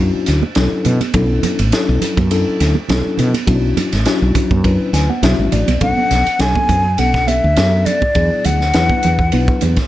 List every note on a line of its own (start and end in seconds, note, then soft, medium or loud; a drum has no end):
0.00 0.10 F#2 medium
0.00 0.41 F#3 medium
0.00 0.41 C#4 medium
0.00 0.41 D4 medium
0.00 0.41 E4 medium
0.00 0.41 F#4 medium
0.15 muted fretless electric bass stroke soft
0.26 0.42 D2 medium
0.26 snare soft
0.26 hi-hat pedal medium
0.26 ride medium
0.43 high conga medium
0.55 0.70 B1 medium
0.55 1.00 F#3 medium
0.55 1.00 C#4 medium
0.55 1.00 D4 medium
0.55 1.00 E4 medium
0.55 1.00 A4 medium
0.55 snare loud
0.55 ride medium
0.55 high conga medium
0.55 low conga medium
0.72 muted fretless electric bass stroke soft
0.85 1.00 B2 medium
0.85 hi-hat pedal medium
0.85 ride medium
0.85 low conga medium
1.01 ride medium
1.01 high conga medium
1.14 1.40 B1 loud
1.14 1.58 F#3 medium
1.14 1.58 C#4 medium
1.14 1.58 D4 medium
1.14 1.58 E4 medium
1.14 1.59 A4 medium
1.14 kick loud
1.14 ride medium
1.43 muted fretless electric bass stroke soft
1.43 hi-hat pedal medium
1.43 ride medium
1.43 high conga medium
1.43 low conga medium
1.59 1.71 A1 medium
1.59 ride medium
1.72 2.17 F#3 medium
1.72 2.17 C#4 medium
1.72 2.17 D4 medium
1.72 2.17 E4 medium
1.72 2.17 A4 medium
1.72 snare loud
1.72 ride medium
1.89 2.01 B1 medium
2.01 muted fretless electric bass stroke soft
2.01 hi-hat pedal medium
2.01 ride medium
2.01 low conga medium
2.17 2.44 F#2 medium
2.17 kick medium
2.17 ride medium
2.17 high conga medium
2.31 2.75 F#3 medium
2.31 2.75 C#4 medium
2.31 2.75 D4 medium
2.31 2.75 E4 medium
2.31 2.75 A4 loud
2.31 ride medium
2.48 muted fretless electric bass stroke soft
2.60 2.74 D2 medium
2.60 snare soft
2.60 hi-hat pedal medium
2.60 ride medium
2.75 high conga medium
2.89 3.04 B1 medium
2.89 3.33 F#3 medium
2.89 3.33 C#4 medium
2.89 3.33 D4 medium
2.89 3.34 E4 medium
2.89 3.34 A4 medium
2.89 snare loud
2.89 ride medium
2.89 high conga medium
2.89 low conga medium
3.18 3.33 B2 medium
3.18 hi-hat pedal medium
3.18 ride medium
3.18 low conga medium
3.34 ride medium
3.34 high conga medium
3.47 3.74 B1 loud
3.47 3.92 F#3 medium
3.47 3.91 C#4 medium
3.47 3.91 D4 medium
3.47 3.91 E4 medium
3.47 3.91 F#4 medium
3.47 kick loud
3.47 ride medium
3.77 hi-hat pedal medium
3.77 ride medium
3.77 high conga medium
3.77 low conga medium
3.92 4.05 A1 medium
3.92 snare soft
3.92 ride medium
4.05 4.50 F#3 medium
4.05 4.50 C#4 medium
4.05 4.50 D4 medium
4.05 4.50 E4 medium
4.05 4.50 F#4 medium
4.05 snare medium
4.05 ride medium
4.22 4.34 B1 medium
4.35 muted fretless electric bass stroke soft
4.35 kick medium
4.35 hi-hat pedal medium
4.35 ride medium
4.35 low conga medium
4.51 4.77 F#2 medium
4.51 kick medium
4.51 high conga medium
4.64 5.09 F#3 medium
4.64 5.09 C#4 medium
4.64 5.09 D4 medium
4.64 5.09 E4 medium
4.64 5.09 B4 medium
4.64 kick medium
4.64 ride medium
4.80 muted fretless electric bass stroke soft
4.93 5.08 D2 medium
4.93 5.09 G#5 medium
4.93 snare soft
4.93 hi-hat pedal medium
4.93 ride medium
5.10 5.22 F#5 medium
5.10 high conga medium
5.23 5.37 B1 medium
5.23 5.67 F#3 medium
5.23 5.67 C#4 medium
5.23 5.67 D4 medium
5.23 5.67 E4 medium
5.23 5.67 F#4 medium
5.23 5.50 E5 medium
5.23 snare loud
5.23 ride medium
5.23 high conga medium
5.23 low conga medium
5.39 5.51 G#1 medium
5.52 5.67 A1 medium
5.52 5.80 D5 medium
5.52 hi-hat pedal medium
5.52 ride medium
5.52 low conga medium
5.68 5.80 B1 medium
5.68 ride medium
5.68 high conga medium
5.81 5.96 B1 medium
5.81 6.25 F#3 medium
5.81 6.25 B3 medium
5.81 6.25 C#4 medium
5.81 6.25 D4 medium
5.81 6.25 A4 medium
5.81 6.42 F#5 medium
5.81 kick medium
5.81 ride medium
5.81 low conga medium
5.97 muted fretless electric bass stroke soft
5.97 high conga medium
6.11 6.25 B1 medium
6.11 snare soft
6.11 hi-hat pedal medium
6.11 ride medium
6.11 low conga medium
6.26 ride soft
6.39 6.54 B1 medium
6.39 6.84 F#3 medium
6.39 6.84 B3 medium
6.39 6.84 C#4 medium
6.39 6.84 D4 medium
6.39 6.84 A4 medium
6.39 7.01 G#5 medium
6.39 snare medium
6.39 ride medium
6.55 kick medium
6.55 high conga medium
6.69 6.95 F#2 medium
6.69 kick medium
6.69 hi-hat pedal medium
6.69 ride medium
6.69 low conga medium
6.98 7.39 B1 medium
6.98 7.43 F#3 medium
6.98 7.43 B3 medium
6.98 7.43 C#4 medium
6.98 7.43 D4 medium
6.98 7.43 A4 medium
6.98 7.29 F#5 medium
6.98 ride medium
6.98 high conga medium
7.14 kick medium
7.14 snare soft
7.28 7.87 E5 medium
7.28 hi-hat pedal medium
7.28 ride medium
7.28 high conga medium
7.44 7.56 D2 medium
7.56 7.84 F#2 medium
7.56 8.01 F#3 medium
7.56 8.01 B3 medium
7.56 8.01 C#4 medium
7.56 8.01 D4 medium
7.56 8.01 A4 medium
7.56 snare loud
7.56 ride medium
7.86 8.47 D5 medium
7.86 hi-hat pedal medium
7.86 ride medium
7.86 low conga medium
8.02 kick medium
8.02 high conga medium
8.15 8.30 E2 medium
8.15 8.60 F#3 medium
8.15 8.60 B3 medium
8.15 8.60 D4 medium
8.15 8.60 E4 medium
8.15 8.60 G#4 medium
8.15 kick medium
8.15 ride medium
8.15 low conga medium
8.44 8.71 D2 medium
8.44 9.62 F#5 medium
8.44 hi-hat pedal medium
8.44 ride medium
8.44 low conga medium
8.61 snare soft
8.74 8.89 E2 medium
8.74 9.18 F#3 medium
8.74 9.18 B3 medium
8.74 9.18 D4 medium
8.74 9.18 E4 medium
8.74 9.18 B4 medium
8.74 snare medium
8.74 ride medium
8.90 kick medium
8.90 high conga medium
9.03 9.30 E2 medium
9.03 hi-hat pedal medium
9.03 ride medium
9.03 low conga medium
9.19 kick medium
9.32 9.47 B1 medium
9.32 9.77 F#3 medium
9.32 9.77 B3 medium
9.32 9.76 D4 medium
9.32 9.77 E4 medium
9.32 9.77 B4 medium
9.32 ride medium
9.32 high conga medium
9.48 kick medium
9.61 9.76 E2 medium
9.61 hi-hat pedal medium
9.61 ride medium
9.61 high conga medium
9.76 kick medium
9.76 snare soft
9.76 ride medium